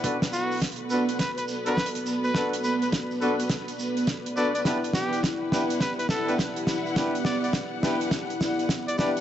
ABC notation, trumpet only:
X:1
M:4/4
L:1/16
Q:"Swing 16ths" 1/4=104
K:Em
V:1 name="Trumpet"
z2 F2 z4 B B z B2 z2 B- | B z B B z8 z2 d d | z2 G2 z4 B B A2 z4 | z2 d d z8 z d d z |]